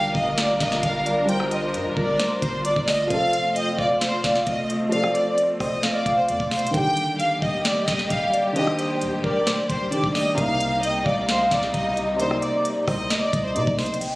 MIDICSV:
0, 0, Header, 1, 9, 480
1, 0, Start_track
1, 0, Tempo, 454545
1, 1359, Time_signature, 4, 2, 24, 8
1, 14947, End_track
2, 0, Start_track
2, 0, Title_t, "Violin section"
2, 0, Program_c, 0, 48
2, 0, Note_on_c, 0, 77, 91
2, 120, Note_off_c, 0, 77, 0
2, 157, Note_on_c, 0, 75, 78
2, 361, Note_off_c, 0, 75, 0
2, 396, Note_on_c, 0, 74, 88
2, 600, Note_off_c, 0, 74, 0
2, 636, Note_on_c, 0, 75, 88
2, 840, Note_off_c, 0, 75, 0
2, 875, Note_on_c, 0, 77, 74
2, 1079, Note_off_c, 0, 77, 0
2, 1361, Note_on_c, 0, 79, 98
2, 1563, Note_off_c, 0, 79, 0
2, 1599, Note_on_c, 0, 75, 75
2, 1802, Note_off_c, 0, 75, 0
2, 2082, Note_on_c, 0, 74, 72
2, 2532, Note_off_c, 0, 74, 0
2, 2553, Note_on_c, 0, 72, 83
2, 2759, Note_off_c, 0, 72, 0
2, 2797, Note_on_c, 0, 74, 77
2, 3001, Note_off_c, 0, 74, 0
2, 3040, Note_on_c, 0, 75, 81
2, 3242, Note_off_c, 0, 75, 0
2, 3275, Note_on_c, 0, 77, 103
2, 3728, Note_off_c, 0, 77, 0
2, 3761, Note_on_c, 0, 75, 97
2, 3963, Note_off_c, 0, 75, 0
2, 4003, Note_on_c, 0, 74, 89
2, 4204, Note_off_c, 0, 74, 0
2, 4237, Note_on_c, 0, 72, 99
2, 4441, Note_off_c, 0, 72, 0
2, 4481, Note_on_c, 0, 74, 82
2, 4683, Note_off_c, 0, 74, 0
2, 4718, Note_on_c, 0, 75, 85
2, 4922, Note_off_c, 0, 75, 0
2, 5201, Note_on_c, 0, 77, 102
2, 5403, Note_off_c, 0, 77, 0
2, 5437, Note_on_c, 0, 74, 81
2, 5641, Note_off_c, 0, 74, 0
2, 5916, Note_on_c, 0, 75, 84
2, 6256, Note_off_c, 0, 75, 0
2, 6277, Note_on_c, 0, 74, 85
2, 6481, Note_off_c, 0, 74, 0
2, 6516, Note_on_c, 0, 72, 78
2, 6619, Note_off_c, 0, 72, 0
2, 6637, Note_on_c, 0, 74, 77
2, 6841, Note_off_c, 0, 74, 0
2, 6884, Note_on_c, 0, 72, 85
2, 7085, Note_off_c, 0, 72, 0
2, 7116, Note_on_c, 0, 79, 118
2, 7568, Note_off_c, 0, 79, 0
2, 7594, Note_on_c, 0, 77, 86
2, 7799, Note_off_c, 0, 77, 0
2, 7838, Note_on_c, 0, 75, 90
2, 8041, Note_off_c, 0, 75, 0
2, 8079, Note_on_c, 0, 74, 89
2, 8282, Note_off_c, 0, 74, 0
2, 8318, Note_on_c, 0, 75, 87
2, 8522, Note_off_c, 0, 75, 0
2, 8556, Note_on_c, 0, 77, 80
2, 8760, Note_off_c, 0, 77, 0
2, 9035, Note_on_c, 0, 75, 101
2, 9240, Note_off_c, 0, 75, 0
2, 9281, Note_on_c, 0, 75, 73
2, 9483, Note_off_c, 0, 75, 0
2, 9758, Note_on_c, 0, 74, 79
2, 10209, Note_off_c, 0, 74, 0
2, 10241, Note_on_c, 0, 72, 83
2, 10443, Note_off_c, 0, 72, 0
2, 10478, Note_on_c, 0, 74, 79
2, 10681, Note_off_c, 0, 74, 0
2, 10716, Note_on_c, 0, 75, 85
2, 10920, Note_off_c, 0, 75, 0
2, 10951, Note_on_c, 0, 77, 102
2, 11406, Note_off_c, 0, 77, 0
2, 11435, Note_on_c, 0, 75, 98
2, 11640, Note_off_c, 0, 75, 0
2, 11681, Note_on_c, 0, 74, 86
2, 11883, Note_off_c, 0, 74, 0
2, 11924, Note_on_c, 0, 72, 88
2, 12125, Note_off_c, 0, 72, 0
2, 12156, Note_on_c, 0, 74, 81
2, 12360, Note_off_c, 0, 74, 0
2, 12401, Note_on_c, 0, 75, 79
2, 12603, Note_off_c, 0, 75, 0
2, 12879, Note_on_c, 0, 72, 102
2, 13082, Note_off_c, 0, 72, 0
2, 13122, Note_on_c, 0, 74, 76
2, 13324, Note_off_c, 0, 74, 0
2, 13600, Note_on_c, 0, 75, 82
2, 13938, Note_off_c, 0, 75, 0
2, 13958, Note_on_c, 0, 74, 83
2, 14161, Note_off_c, 0, 74, 0
2, 14200, Note_on_c, 0, 72, 81
2, 14301, Note_off_c, 0, 72, 0
2, 14319, Note_on_c, 0, 74, 85
2, 14522, Note_off_c, 0, 74, 0
2, 14563, Note_on_c, 0, 72, 84
2, 14764, Note_off_c, 0, 72, 0
2, 14802, Note_on_c, 0, 79, 112
2, 14947, Note_off_c, 0, 79, 0
2, 14947, End_track
3, 0, Start_track
3, 0, Title_t, "Soft synth lead"
3, 0, Program_c, 1, 80
3, 0, Note_on_c, 1, 79, 88
3, 146, Note_off_c, 1, 79, 0
3, 156, Note_on_c, 1, 77, 81
3, 1075, Note_off_c, 1, 77, 0
3, 1118, Note_on_c, 1, 74, 87
3, 1347, Note_off_c, 1, 74, 0
3, 1358, Note_on_c, 1, 72, 114
3, 2036, Note_off_c, 1, 72, 0
3, 2079, Note_on_c, 1, 70, 90
3, 2307, Note_off_c, 1, 70, 0
3, 2318, Note_on_c, 1, 72, 94
3, 2770, Note_off_c, 1, 72, 0
3, 2797, Note_on_c, 1, 74, 96
3, 3026, Note_off_c, 1, 74, 0
3, 3042, Note_on_c, 1, 74, 84
3, 3268, Note_off_c, 1, 74, 0
3, 3760, Note_on_c, 1, 79, 78
3, 3987, Note_off_c, 1, 79, 0
3, 3997, Note_on_c, 1, 77, 86
3, 4916, Note_off_c, 1, 77, 0
3, 4962, Note_on_c, 1, 75, 85
3, 5189, Note_off_c, 1, 75, 0
3, 5199, Note_on_c, 1, 74, 107
3, 5877, Note_off_c, 1, 74, 0
3, 5918, Note_on_c, 1, 72, 77
3, 6146, Note_off_c, 1, 72, 0
3, 6159, Note_on_c, 1, 77, 100
3, 7077, Note_off_c, 1, 77, 0
3, 7600, Note_on_c, 1, 77, 83
3, 7827, Note_off_c, 1, 77, 0
3, 7838, Note_on_c, 1, 75, 85
3, 8756, Note_off_c, 1, 75, 0
3, 8794, Note_on_c, 1, 74, 81
3, 9024, Note_off_c, 1, 74, 0
3, 9038, Note_on_c, 1, 72, 110
3, 9716, Note_off_c, 1, 72, 0
3, 9757, Note_on_c, 1, 70, 93
3, 9986, Note_off_c, 1, 70, 0
3, 10000, Note_on_c, 1, 72, 102
3, 10451, Note_off_c, 1, 72, 0
3, 10478, Note_on_c, 1, 74, 88
3, 10707, Note_off_c, 1, 74, 0
3, 10720, Note_on_c, 1, 74, 87
3, 10947, Note_off_c, 1, 74, 0
3, 11441, Note_on_c, 1, 79, 75
3, 11668, Note_off_c, 1, 79, 0
3, 11678, Note_on_c, 1, 77, 99
3, 12596, Note_off_c, 1, 77, 0
3, 12637, Note_on_c, 1, 75, 82
3, 12866, Note_off_c, 1, 75, 0
3, 12881, Note_on_c, 1, 74, 113
3, 13557, Note_off_c, 1, 74, 0
3, 13599, Note_on_c, 1, 72, 83
3, 13827, Note_off_c, 1, 72, 0
3, 13841, Note_on_c, 1, 75, 96
3, 14758, Note_off_c, 1, 75, 0
3, 14947, End_track
4, 0, Start_track
4, 0, Title_t, "Grand piano"
4, 0, Program_c, 2, 0
4, 0, Control_c, 2, 64, 127
4, 0, Note_on_c, 2, 55, 73
4, 0, Note_on_c, 2, 65, 62
4, 0, Note_on_c, 2, 70, 78
4, 1303, Note_off_c, 2, 55, 0
4, 1320, Note_off_c, 2, 65, 0
4, 1325, Note_on_c, 2, 55, 68
4, 1337, Note_off_c, 2, 70, 0
4, 1359, Note_on_c, 2, 65, 63
4, 1392, Note_on_c, 2, 70, 80
4, 3223, Note_off_c, 2, 55, 0
4, 3240, Note_off_c, 2, 65, 0
4, 3246, Note_on_c, 2, 53, 73
4, 3257, Note_off_c, 2, 70, 0
4, 3279, Note_on_c, 2, 60, 63
4, 3293, Control_c, 2, 64, 0
4, 3312, Note_on_c, 2, 69, 79
4, 3477, Control_c, 2, 64, 127
4, 5144, Note_off_c, 2, 53, 0
4, 5160, Note_off_c, 2, 60, 0
4, 5165, Note_on_c, 2, 53, 75
4, 5177, Note_off_c, 2, 69, 0
4, 5198, Note_on_c, 2, 60, 67
4, 5231, Note_on_c, 2, 69, 71
4, 7063, Note_off_c, 2, 53, 0
4, 7080, Note_off_c, 2, 60, 0
4, 7086, Note_on_c, 2, 51, 77
4, 7097, Note_off_c, 2, 69, 0
4, 7119, Note_on_c, 2, 50, 61
4, 7130, Control_c, 2, 64, 0
4, 7151, Note_on_c, 2, 67, 84
4, 7291, Control_c, 2, 64, 127
4, 8984, Note_off_c, 2, 51, 0
4, 9000, Note_off_c, 2, 50, 0
4, 9006, Note_on_c, 2, 51, 66
4, 9017, Note_off_c, 2, 67, 0
4, 9038, Note_on_c, 2, 62, 66
4, 9071, Note_on_c, 2, 67, 74
4, 10433, Note_off_c, 2, 51, 0
4, 10450, Note_off_c, 2, 62, 0
4, 10462, Note_on_c, 2, 51, 54
4, 10466, Note_off_c, 2, 67, 0
4, 10478, Note_on_c, 2, 62, 45
4, 10495, Note_on_c, 2, 67, 57
4, 10925, Note_on_c, 2, 48, 72
4, 10950, Note_off_c, 2, 51, 0
4, 10958, Note_on_c, 2, 58, 67
4, 10959, Note_off_c, 2, 62, 0
4, 10967, Note_off_c, 2, 67, 0
4, 10971, Control_c, 2, 64, 0
4, 10991, Note_on_c, 2, 63, 73
4, 11161, Control_c, 2, 64, 127
4, 12823, Note_off_c, 2, 48, 0
4, 12840, Note_off_c, 2, 58, 0
4, 12846, Note_on_c, 2, 48, 71
4, 12857, Note_off_c, 2, 63, 0
4, 12878, Note_on_c, 2, 58, 63
4, 12912, Note_on_c, 2, 63, 77
4, 14273, Note_off_c, 2, 48, 0
4, 14290, Note_off_c, 2, 58, 0
4, 14302, Note_on_c, 2, 48, 52
4, 14307, Note_off_c, 2, 63, 0
4, 14318, Note_on_c, 2, 58, 47
4, 14335, Note_on_c, 2, 63, 59
4, 14790, Note_off_c, 2, 48, 0
4, 14798, Note_off_c, 2, 58, 0
4, 14807, Note_off_c, 2, 63, 0
4, 14811, Control_c, 2, 64, 0
4, 14947, End_track
5, 0, Start_track
5, 0, Title_t, "String section"
5, 0, Program_c, 3, 48
5, 0, Note_on_c, 3, 55, 81
5, 0, Note_on_c, 3, 62, 74
5, 0, Note_on_c, 3, 65, 73
5, 0, Note_on_c, 3, 70, 90
5, 3240, Note_off_c, 3, 55, 0
5, 3240, Note_off_c, 3, 62, 0
5, 3240, Note_off_c, 3, 70, 0
5, 3279, Note_on_c, 3, 57, 83
5, 3279, Note_on_c, 3, 60, 75
5, 7076, Note_off_c, 3, 65, 0
5, 7081, Note_off_c, 3, 57, 0
5, 7081, Note_off_c, 3, 60, 0
5, 7119, Note_on_c, 3, 55, 81
5, 7120, Note_on_c, 3, 58, 74
5, 7120, Note_on_c, 3, 67, 90
5, 10921, Note_off_c, 3, 55, 0
5, 10921, Note_off_c, 3, 67, 0
5, 10958, Note_on_c, 3, 63, 89
5, 10959, Note_on_c, 3, 48, 82
5, 10959, Note_on_c, 3, 55, 76
5, 14757, Note_off_c, 3, 58, 0
5, 14760, Note_off_c, 3, 48, 0
5, 14760, Note_off_c, 3, 55, 0
5, 14760, Note_off_c, 3, 63, 0
5, 14947, End_track
6, 0, Start_track
6, 0, Title_t, "808-style bass"
6, 0, Program_c, 4, 38
6, 0, Note_on_c, 4, 31, 113
6, 130, Note_off_c, 4, 31, 0
6, 158, Note_on_c, 4, 31, 105
6, 619, Note_off_c, 4, 31, 0
6, 639, Note_on_c, 4, 31, 105
6, 869, Note_off_c, 4, 31, 0
6, 879, Note_on_c, 4, 31, 114
6, 1838, Note_on_c, 4, 43, 98
6, 1854, Note_off_c, 4, 31, 0
6, 1958, Note_on_c, 4, 31, 98
6, 1974, Note_off_c, 4, 43, 0
6, 2073, Note_off_c, 4, 31, 0
6, 2077, Note_on_c, 4, 31, 104
6, 2308, Note_off_c, 4, 31, 0
6, 2559, Note_on_c, 4, 31, 107
6, 2904, Note_off_c, 4, 31, 0
6, 2918, Note_on_c, 4, 31, 102
6, 3264, Note_off_c, 4, 31, 0
6, 3279, Note_on_c, 4, 29, 108
6, 3970, Note_off_c, 4, 29, 0
6, 3997, Note_on_c, 4, 29, 103
6, 4459, Note_off_c, 4, 29, 0
6, 4479, Note_on_c, 4, 29, 106
6, 4709, Note_off_c, 4, 29, 0
6, 4719, Note_on_c, 4, 29, 113
6, 5410, Note_off_c, 4, 29, 0
6, 5917, Note_on_c, 4, 29, 106
6, 6148, Note_off_c, 4, 29, 0
6, 6399, Note_on_c, 4, 29, 109
6, 6638, Note_on_c, 4, 41, 102
6, 6654, Note_off_c, 4, 29, 0
6, 6753, Note_off_c, 4, 41, 0
6, 6759, Note_on_c, 4, 29, 109
6, 6999, Note_on_c, 4, 27, 97
6, 7014, Note_off_c, 4, 29, 0
6, 7113, Note_off_c, 4, 27, 0
6, 7119, Note_on_c, 4, 27, 108
6, 7810, Note_off_c, 4, 27, 0
6, 7838, Note_on_c, 4, 27, 104
6, 8299, Note_off_c, 4, 27, 0
6, 8319, Note_on_c, 4, 27, 104
6, 8549, Note_off_c, 4, 27, 0
6, 8559, Note_on_c, 4, 27, 110
6, 9519, Note_on_c, 4, 39, 101
6, 9535, Note_off_c, 4, 27, 0
6, 9639, Note_on_c, 4, 27, 96
6, 9655, Note_off_c, 4, 39, 0
6, 9753, Note_off_c, 4, 27, 0
6, 9758, Note_on_c, 4, 27, 109
6, 9989, Note_off_c, 4, 27, 0
6, 10239, Note_on_c, 4, 27, 105
6, 10585, Note_off_c, 4, 27, 0
6, 10599, Note_on_c, 4, 27, 104
6, 10944, Note_off_c, 4, 27, 0
6, 10959, Note_on_c, 4, 36, 112
6, 11650, Note_off_c, 4, 36, 0
6, 11678, Note_on_c, 4, 36, 106
6, 12139, Note_off_c, 4, 36, 0
6, 12159, Note_on_c, 4, 36, 104
6, 12389, Note_off_c, 4, 36, 0
6, 12399, Note_on_c, 4, 36, 108
6, 13090, Note_off_c, 4, 36, 0
6, 13597, Note_on_c, 4, 36, 102
6, 13828, Note_off_c, 4, 36, 0
6, 14079, Note_on_c, 4, 36, 106
6, 14319, Note_on_c, 4, 48, 102
6, 14335, Note_off_c, 4, 36, 0
6, 14433, Note_off_c, 4, 48, 0
6, 14438, Note_on_c, 4, 36, 105
6, 14678, Note_on_c, 4, 34, 99
6, 14694, Note_off_c, 4, 36, 0
6, 14793, Note_off_c, 4, 34, 0
6, 14947, End_track
7, 0, Start_track
7, 0, Title_t, "Downlifter"
7, 0, Program_c, 5, 103
7, 14798, Note_on_c, 5, 60, 88
7, 14947, Note_off_c, 5, 60, 0
7, 14947, End_track
8, 0, Start_track
8, 0, Title_t, "Impact"
8, 0, Program_c, 6, 103
8, 0, Note_on_c, 6, 60, 89
8, 1359, Note_off_c, 6, 60, 0
8, 14947, End_track
9, 0, Start_track
9, 0, Title_t, "Drums"
9, 158, Note_on_c, 9, 36, 99
9, 263, Note_off_c, 9, 36, 0
9, 398, Note_on_c, 9, 38, 104
9, 398, Note_on_c, 9, 42, 80
9, 503, Note_off_c, 9, 42, 0
9, 504, Note_off_c, 9, 38, 0
9, 638, Note_on_c, 9, 38, 95
9, 639, Note_on_c, 9, 36, 110
9, 640, Note_on_c, 9, 42, 74
9, 744, Note_off_c, 9, 36, 0
9, 744, Note_off_c, 9, 38, 0
9, 745, Note_off_c, 9, 42, 0
9, 760, Note_on_c, 9, 38, 71
9, 865, Note_off_c, 9, 38, 0
9, 877, Note_on_c, 9, 42, 85
9, 879, Note_on_c, 9, 36, 101
9, 982, Note_off_c, 9, 42, 0
9, 985, Note_off_c, 9, 36, 0
9, 1121, Note_on_c, 9, 42, 69
9, 1227, Note_off_c, 9, 42, 0
9, 1358, Note_on_c, 9, 42, 79
9, 1464, Note_off_c, 9, 42, 0
9, 1479, Note_on_c, 9, 37, 97
9, 1584, Note_off_c, 9, 37, 0
9, 1598, Note_on_c, 9, 42, 88
9, 1704, Note_off_c, 9, 42, 0
9, 1839, Note_on_c, 9, 42, 82
9, 1945, Note_off_c, 9, 42, 0
9, 2077, Note_on_c, 9, 36, 101
9, 2183, Note_off_c, 9, 36, 0
9, 2318, Note_on_c, 9, 38, 99
9, 2318, Note_on_c, 9, 42, 80
9, 2423, Note_off_c, 9, 42, 0
9, 2424, Note_off_c, 9, 38, 0
9, 2559, Note_on_c, 9, 36, 108
9, 2560, Note_on_c, 9, 42, 75
9, 2664, Note_off_c, 9, 36, 0
9, 2665, Note_off_c, 9, 42, 0
9, 2796, Note_on_c, 9, 42, 87
9, 2902, Note_off_c, 9, 42, 0
9, 2918, Note_on_c, 9, 36, 98
9, 3024, Note_off_c, 9, 36, 0
9, 3038, Note_on_c, 9, 38, 97
9, 3041, Note_on_c, 9, 46, 55
9, 3144, Note_off_c, 9, 38, 0
9, 3147, Note_off_c, 9, 46, 0
9, 3278, Note_on_c, 9, 42, 80
9, 3279, Note_on_c, 9, 36, 111
9, 3384, Note_off_c, 9, 36, 0
9, 3384, Note_off_c, 9, 42, 0
9, 3519, Note_on_c, 9, 42, 90
9, 3624, Note_off_c, 9, 42, 0
9, 3759, Note_on_c, 9, 42, 86
9, 3865, Note_off_c, 9, 42, 0
9, 3997, Note_on_c, 9, 36, 101
9, 4103, Note_off_c, 9, 36, 0
9, 4238, Note_on_c, 9, 38, 100
9, 4238, Note_on_c, 9, 42, 83
9, 4343, Note_off_c, 9, 42, 0
9, 4344, Note_off_c, 9, 38, 0
9, 4479, Note_on_c, 9, 36, 109
9, 4479, Note_on_c, 9, 38, 100
9, 4480, Note_on_c, 9, 42, 74
9, 4584, Note_off_c, 9, 36, 0
9, 4584, Note_off_c, 9, 38, 0
9, 4585, Note_off_c, 9, 42, 0
9, 4600, Note_on_c, 9, 38, 68
9, 4705, Note_off_c, 9, 38, 0
9, 4717, Note_on_c, 9, 42, 87
9, 4719, Note_on_c, 9, 36, 99
9, 4822, Note_off_c, 9, 42, 0
9, 4824, Note_off_c, 9, 36, 0
9, 4962, Note_on_c, 9, 42, 69
9, 5067, Note_off_c, 9, 42, 0
9, 5198, Note_on_c, 9, 42, 82
9, 5304, Note_off_c, 9, 42, 0
9, 5318, Note_on_c, 9, 37, 98
9, 5424, Note_off_c, 9, 37, 0
9, 5438, Note_on_c, 9, 42, 90
9, 5544, Note_off_c, 9, 42, 0
9, 5679, Note_on_c, 9, 42, 85
9, 5785, Note_off_c, 9, 42, 0
9, 5918, Note_on_c, 9, 36, 98
9, 5919, Note_on_c, 9, 37, 77
9, 5920, Note_on_c, 9, 46, 55
9, 6023, Note_off_c, 9, 36, 0
9, 6024, Note_off_c, 9, 37, 0
9, 6026, Note_off_c, 9, 46, 0
9, 6158, Note_on_c, 9, 42, 83
9, 6159, Note_on_c, 9, 38, 97
9, 6264, Note_off_c, 9, 38, 0
9, 6264, Note_off_c, 9, 42, 0
9, 6399, Note_on_c, 9, 36, 110
9, 6400, Note_on_c, 9, 42, 73
9, 6505, Note_off_c, 9, 36, 0
9, 6506, Note_off_c, 9, 42, 0
9, 6637, Note_on_c, 9, 42, 88
9, 6743, Note_off_c, 9, 42, 0
9, 6759, Note_on_c, 9, 36, 97
9, 6864, Note_off_c, 9, 36, 0
9, 6878, Note_on_c, 9, 38, 97
9, 6879, Note_on_c, 9, 42, 43
9, 6882, Note_on_c, 9, 46, 54
9, 6959, Note_off_c, 9, 42, 0
9, 6959, Note_on_c, 9, 42, 57
9, 6984, Note_off_c, 9, 38, 0
9, 6987, Note_off_c, 9, 46, 0
9, 7039, Note_off_c, 9, 42, 0
9, 7039, Note_on_c, 9, 42, 72
9, 7119, Note_off_c, 9, 42, 0
9, 7119, Note_on_c, 9, 36, 112
9, 7119, Note_on_c, 9, 42, 79
9, 7224, Note_off_c, 9, 42, 0
9, 7225, Note_off_c, 9, 36, 0
9, 7359, Note_on_c, 9, 42, 87
9, 7464, Note_off_c, 9, 42, 0
9, 7599, Note_on_c, 9, 42, 83
9, 7705, Note_off_c, 9, 42, 0
9, 7838, Note_on_c, 9, 36, 97
9, 7943, Note_off_c, 9, 36, 0
9, 8078, Note_on_c, 9, 42, 81
9, 8079, Note_on_c, 9, 38, 98
9, 8184, Note_off_c, 9, 38, 0
9, 8184, Note_off_c, 9, 42, 0
9, 8319, Note_on_c, 9, 36, 111
9, 8319, Note_on_c, 9, 38, 97
9, 8320, Note_on_c, 9, 42, 74
9, 8425, Note_off_c, 9, 36, 0
9, 8425, Note_off_c, 9, 38, 0
9, 8426, Note_off_c, 9, 42, 0
9, 8440, Note_on_c, 9, 38, 68
9, 8546, Note_off_c, 9, 38, 0
9, 8557, Note_on_c, 9, 42, 88
9, 8559, Note_on_c, 9, 36, 98
9, 8663, Note_off_c, 9, 42, 0
9, 8665, Note_off_c, 9, 36, 0
9, 8802, Note_on_c, 9, 42, 66
9, 8908, Note_off_c, 9, 42, 0
9, 9039, Note_on_c, 9, 42, 80
9, 9144, Note_off_c, 9, 42, 0
9, 9159, Note_on_c, 9, 37, 93
9, 9265, Note_off_c, 9, 37, 0
9, 9279, Note_on_c, 9, 42, 88
9, 9384, Note_off_c, 9, 42, 0
9, 9520, Note_on_c, 9, 42, 87
9, 9625, Note_off_c, 9, 42, 0
9, 9758, Note_on_c, 9, 36, 100
9, 9863, Note_off_c, 9, 36, 0
9, 9998, Note_on_c, 9, 42, 81
9, 9999, Note_on_c, 9, 38, 100
9, 10104, Note_off_c, 9, 42, 0
9, 10105, Note_off_c, 9, 38, 0
9, 10239, Note_on_c, 9, 36, 110
9, 10240, Note_on_c, 9, 42, 72
9, 10345, Note_off_c, 9, 36, 0
9, 10346, Note_off_c, 9, 42, 0
9, 10477, Note_on_c, 9, 42, 88
9, 10583, Note_off_c, 9, 42, 0
9, 10599, Note_on_c, 9, 36, 98
9, 10704, Note_off_c, 9, 36, 0
9, 10719, Note_on_c, 9, 38, 97
9, 10722, Note_on_c, 9, 46, 54
9, 10824, Note_off_c, 9, 38, 0
9, 10828, Note_off_c, 9, 46, 0
9, 10959, Note_on_c, 9, 36, 115
9, 10959, Note_on_c, 9, 42, 79
9, 11064, Note_off_c, 9, 42, 0
9, 11065, Note_off_c, 9, 36, 0
9, 11199, Note_on_c, 9, 42, 89
9, 11304, Note_off_c, 9, 42, 0
9, 11439, Note_on_c, 9, 42, 84
9, 11545, Note_off_c, 9, 42, 0
9, 11678, Note_on_c, 9, 36, 101
9, 11783, Note_off_c, 9, 36, 0
9, 11918, Note_on_c, 9, 42, 81
9, 11919, Note_on_c, 9, 38, 99
9, 12024, Note_off_c, 9, 38, 0
9, 12024, Note_off_c, 9, 42, 0
9, 12159, Note_on_c, 9, 36, 109
9, 12159, Note_on_c, 9, 38, 97
9, 12160, Note_on_c, 9, 42, 74
9, 12264, Note_off_c, 9, 38, 0
9, 12265, Note_off_c, 9, 36, 0
9, 12266, Note_off_c, 9, 42, 0
9, 12280, Note_on_c, 9, 38, 67
9, 12385, Note_off_c, 9, 38, 0
9, 12397, Note_on_c, 9, 42, 88
9, 12399, Note_on_c, 9, 36, 99
9, 12502, Note_off_c, 9, 42, 0
9, 12505, Note_off_c, 9, 36, 0
9, 12642, Note_on_c, 9, 42, 68
9, 12748, Note_off_c, 9, 42, 0
9, 12879, Note_on_c, 9, 42, 80
9, 12984, Note_off_c, 9, 42, 0
9, 12999, Note_on_c, 9, 37, 93
9, 13104, Note_off_c, 9, 37, 0
9, 13119, Note_on_c, 9, 42, 88
9, 13224, Note_off_c, 9, 42, 0
9, 13359, Note_on_c, 9, 42, 83
9, 13465, Note_off_c, 9, 42, 0
9, 13597, Note_on_c, 9, 36, 97
9, 13598, Note_on_c, 9, 37, 76
9, 13600, Note_on_c, 9, 46, 54
9, 13703, Note_off_c, 9, 36, 0
9, 13704, Note_off_c, 9, 37, 0
9, 13705, Note_off_c, 9, 46, 0
9, 13838, Note_on_c, 9, 38, 100
9, 13838, Note_on_c, 9, 42, 81
9, 13943, Note_off_c, 9, 42, 0
9, 13944, Note_off_c, 9, 38, 0
9, 14079, Note_on_c, 9, 36, 108
9, 14080, Note_on_c, 9, 42, 77
9, 14184, Note_off_c, 9, 36, 0
9, 14185, Note_off_c, 9, 42, 0
9, 14317, Note_on_c, 9, 42, 86
9, 14422, Note_off_c, 9, 42, 0
9, 14438, Note_on_c, 9, 36, 97
9, 14544, Note_off_c, 9, 36, 0
9, 14558, Note_on_c, 9, 38, 96
9, 14558, Note_on_c, 9, 42, 42
9, 14561, Note_on_c, 9, 46, 53
9, 14638, Note_off_c, 9, 42, 0
9, 14638, Note_on_c, 9, 42, 56
9, 14663, Note_off_c, 9, 38, 0
9, 14667, Note_off_c, 9, 46, 0
9, 14718, Note_off_c, 9, 42, 0
9, 14718, Note_on_c, 9, 42, 71
9, 14798, Note_off_c, 9, 42, 0
9, 14798, Note_on_c, 9, 42, 78
9, 14903, Note_off_c, 9, 42, 0
9, 14947, End_track
0, 0, End_of_file